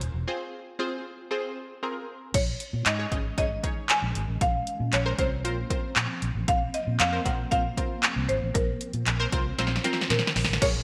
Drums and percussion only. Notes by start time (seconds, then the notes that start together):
0.01 closed hi-hat
2.34 kick, closed hi-hat, crash
2.60 closed hi-hat
2.86 clap, closed hi-hat
3.12 kick, closed hi-hat
3.38 kick, closed hi-hat
3.64 kick, closed hi-hat
3.89 clap, closed hi-hat
4.15 closed hi-hat
4.41 kick, closed hi-hat
4.67 closed hi-hat
4.93 clap, closed hi-hat
5.19 kick, closed hi-hat
5.45 closed hi-hat
5.70 kick, closed hi-hat
5.96 clap, closed hi-hat
6.22 closed hi-hat
6.48 kick, closed hi-hat
6.74 closed hi-hat
7.00 clap, closed hi-hat
7.26 kick, closed hi-hat
7.52 kick, closed hi-hat
7.77 kick, closed hi-hat
8.03 clap, closed hi-hat
8.29 closed hi-hat
8.55 kick, closed hi-hat
8.81 closed hi-hat
8.93 closed hi-hat
9.07 clap, closed hi-hat
9.32 kick, closed hi-hat
9.58 snare, closed hi-hat
9.67 snare
9.76 snare
9.84 snare, closed hi-hat
9.93 snare
10.01 snare
10.10 snare, closed hi-hat
10.19 snare
10.27 snare
10.36 snare, open hi-hat
10.45 snare
10.53 snare
10.62 kick, closed hi-hat, crash